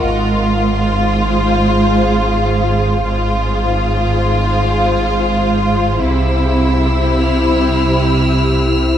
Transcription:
0.04 sub bass G#1, double bass section G#1, cello section G#2, violin section F4, ambient pad G#4 C5 F5
3.04 sub bass G#1, double bass section G#1, cello section G#2, violin section F4, ambient pad G#4 C5 F5
6.03 sub bass C2, double bass section C2, cello section C3, ambient pad E4 G4, violin section E4 E6
7.05 violin section F6

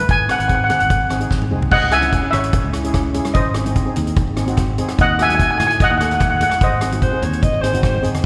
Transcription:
Already playing: steel pan D#4 B4
0.09 fingered electric bass G#1, steel pan G#5, kick, closed hi-hat
0.28 steel pan C4 D#4 G#4 F#5, cross-stick, closed hi-hat
0.39 fingered electric bass G#1, steel pan F#5, closed hi-hat
0.48 steel pan C4 D#4 G#4 F#5, kick, closed hi-hat
0.55 steel pan F#5
0.64 steel pan F#5
0.68 steel pan C4 D#4 G#4 F#5, cross-stick, closed hi-hat, high conga, low conga
0.79 fingered electric bass G#1, steel pan F#5, closed hi-hat, low conga
0.90 kick, closed hi-hat
1.09 fingered electric bass G#1, steel pan C4 D#4 G#4, cross-stick, closed hi-hat
1.19 steel pan C4 D#4 G#4, closed hi-hat
1.30 fingered electric bass G#1, kick, snare
1.42 high conga
1.51 fingered electric bass C2, steel pan C4 D#4 G#4, mid tom
1.61 floor tom, high conga
1.71 fingered electric bass C#2, steel pan D#5 F#5, kick, crash
1.91 steel pan C#4 E4 G#4 E5 G#5, cross-stick, closed hi-hat
2.00 steel pan C#4 E4 G#4, closed hi-hat, high conga
2.12 kick, closed hi-hat
2.22 steel pan C#4 E4 G#4
2.31 fingered electric bass G#1, steel pan C#5 E5, cross-stick, closed hi-hat, low conga
2.44 closed hi-hat
2.53 kick, closed hi-hat
2.64 fingered electric bass C#2
2.73 steel pan C#4 E4 G#4, cross-stick, closed hi-hat
2.84 steel pan C#4 E4 G#4, closed hi-hat
2.94 kick, cross-stick, closed hi-hat, high conga
3.13 steel pan C#4 E4 G#4, closed hi-hat, low conga
3.25 cross-stick, closed hi-hat, high conga
3.34 fingered electric bass G#1, steel pan C5 D#5, kick, closed hi-hat
3.54 steel pan C4 D#4 G#4, cross-stick, closed hi-hat
3.65 steel pan C4 D#4 G#4, closed hi-hat, high conga
3.75 kick, closed hi-hat
3.85 steel pan C4 D#4 G#4
3.96 fingered electric bass D#2, closed hi-hat, low conga
4.07 closed hi-hat
4.16 kick, closed hi-hat
4.28 fingered electric bass G#1
4.36 steel pan C4 D#4 G#4, cross-stick, closed hi-hat
4.46 steel pan C4 D#4 F#4, closed hi-hat
4.57 kick, cross-stick, closed hi-hat, high conga
4.78 steel pan C4 D#4 G#4, closed hi-hat, low conga
4.89 cross-stick, closed hi-hat
4.98 fingered electric bass D#2, steel pan D#5 F#5, kick, closed hi-hat
5.19 steel pan A3 D#4 F#4 E5 G#5, cross-stick, closed hi-hat
5.29 steel pan A3 D#4 F#4 G#5, closed hi-hat, high conga
5.35 steel pan G#5
5.39 steel pan G#5, kick, closed hi-hat
5.51 steel pan A3 D#4 F#4 G#5
5.58 fingered electric bass A2, steel pan G#5, cross-stick, closed hi-hat, low conga
5.67 steel pan G#5, closed hi-hat
5.80 steel pan D#5 F#5, kick, closed hi-hat
5.90 fingered electric bass D#2, steel pan F#5
5.98 steel pan A3 F#5, cross-stick, closed hi-hat
6.03 steel pan D#4 A4 F#5
6.11 steel pan A3 D#4 A4 F#5, closed hi-hat
6.20 steel pan F#5, kick, cross-stick, closed hi-hat, high conga
6.30 steel pan F#5
6.36 steel pan F#5
6.41 steel pan A3 D#4 G#4 F#5, closed hi-hat, low conga
6.50 steel pan F#5, cross-stick, closed hi-hat, high conga
6.61 fingered electric bass G#1, steel pan C5 D#5, kick, closed hi-hat
6.81 steel pan C4 D#4 G#4, cross-stick, closed hi-hat, high conga
6.92 steel pan C4 D#4 F#4, closed hi-hat, high conga
7.01 alto saxophone C5, kick, closed hi-hat
7.12 steel pan C4 D#4 G#4
7.22 fingered electric bass D#2, alto saxophone C#5, closed hi-hat, low conga
7.33 closed hi-hat
7.43 alto saxophone D#5, kick, closed hi-hat
7.54 fingered electric bass G#1
7.61 steel pan C4 D#4 G#4, alto saxophone C5, cross-stick, closed hi-hat
7.73 steel pan C4 D#4 F#4, closed hi-hat, low conga
7.83 alto saxophone C5, kick, cross-stick, closed hi-hat, high conga
7.95 high conga
8.02 steel pan C4 D#4 G#4, closed hi-hat, low conga
8.15 cross-stick, closed hi-hat, low conga

